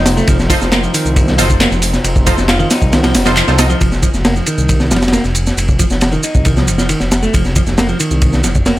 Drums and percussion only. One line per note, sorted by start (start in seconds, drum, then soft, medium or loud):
0.06 snare loud
0.06 open hi-hat medium
0.06 ride medium
0.06 shaker medium
0.17 snare soft
0.17 shaker soft
0.27 kick loud
0.27 ride medium
0.27 shaker soft
0.39 snare soft
0.39 shaker soft
0.50 kick medium
0.50 open hi-hat medium
0.50 ride medium
0.50 shaker medium
0.61 snare soft
0.61 shaker soft
0.72 snare loud
0.72 clap loud
0.72 ride medium
0.72 shaker soft
0.83 shaker soft
0.94 open hi-hat medium
0.94 ride medium
0.94 shaker medium
1.06 shaker soft
1.16 kick loud
1.16 ride loud
1.16 shaker soft
1.28 snare medium
1.28 shaker soft
1.38 snare soft
1.38 open hi-hat medium
1.38 ride medium
1.38 shaker medium
1.50 kick medium
1.50 shaker soft
1.60 snare loud
1.60 clap loud
1.60 ride loud
1.60 shaker soft
1.71 snare medium
1.71 shaker soft
1.82 open hi-hat medium
1.82 ride medium
1.82 shaker medium
1.93 snare medium
1.93 shaker soft
2.04 ride medium
2.04 shaker soft
2.16 kick medium
2.16 shaker soft
2.27 kick loud
2.27 open hi-hat medium
2.27 ride medium
2.27 shaker medium
2.38 snare medium
2.38 shaker soft
2.48 snare loud
2.48 clap loud
2.48 ride medium
2.48 shaker soft
2.60 shaker soft
2.71 snare loud
2.71 open hi-hat medium
2.71 ride medium
2.71 shaker medium
2.82 kick loud
2.82 shaker soft
2.93 snare loud
2.93 ride medium
2.93 shaker soft
3.03 snare loud
3.03 ride medium
3.03 shaker soft
3.15 snare loud
3.15 open hi-hat medium
3.15 ride medium
3.15 shaker medium
3.26 snare loud
3.26 open hi-hat medium
3.26 ride medium
3.26 shaker soft
3.36 clap medium
3.36 ride medium
3.36 shaker soft
3.47 snare soft
3.47 shaker soft
3.58 snare loud
3.58 open hi-hat medium
3.58 ride medium
3.58 shaker medium
3.70 shaker soft
3.81 kick loud
3.81 ride medium
3.81 shaker soft
3.92 snare soft
3.92 shaker soft
4.03 kick medium
4.03 ride medium
4.03 shaker medium
4.14 snare soft
4.14 shaker soft
4.25 snare loud
4.25 ride medium
4.25 shaker soft
4.36 shaker soft
4.46 ride medium
4.46 shaker medium
4.58 shaker soft
4.69 kick loud
4.69 ride medium
4.69 shaker soft
4.80 snare medium
4.80 shaker soft
4.91 snare medium
4.91 ride medium
4.91 shaker medium
4.96 snare medium
4.96 ride medium
5.02 snare medium
5.02 ride medium
5.02 shaker soft
5.08 snare medium
5.08 ride medium
5.13 snare loud
5.13 ride medium
5.13 shaker soft
5.24 snare soft
5.24 shaker soft
5.35 ride medium
5.35 shaker medium
5.46 snare soft
5.46 shaker soft
5.58 ride medium
5.58 shaker soft
5.68 kick medium
5.68 shaker soft
5.79 kick medium
5.79 ride medium
5.79 shaker medium
5.90 snare medium
5.90 shaker soft
6.01 snare loud
6.01 ride medium
6.01 shaker soft
6.12 shaker soft
6.23 ride medium
6.23 shaker medium
6.35 kick medium
6.35 shaker soft
6.45 kick loud
6.45 ride medium
6.45 shaker soft
6.57 snare medium
6.57 shaker soft
6.68 ride medium
6.68 shaker medium
6.78 snare medium
6.78 shaker soft
6.89 ride medium
6.89 shaker soft
7.00 snare soft
7.00 shaker soft
7.12 snare loud
7.12 ride medium
7.12 shaker medium
7.23 snare soft
7.23 shaker soft
7.34 kick loud
7.34 ride medium
7.34 shaker soft
7.45 snare soft
7.45 shaker soft
7.56 kick medium
7.56 ride medium
7.56 shaker medium
7.67 snare soft
7.67 shaker soft
7.78 snare loud
7.78 ride medium
7.78 shaker soft
7.89 shaker soft
8.00 ride medium
8.00 shaker medium
8.11 shaker soft
8.22 kick loud
8.22 ride medium
8.22 shaker soft
8.33 snare medium
8.33 shaker soft
8.44 snare soft
8.44 ride medium
8.44 shaker medium
8.55 kick medium
8.55 shaker soft
8.66 snare loud
8.66 ride medium
8.66 shaker soft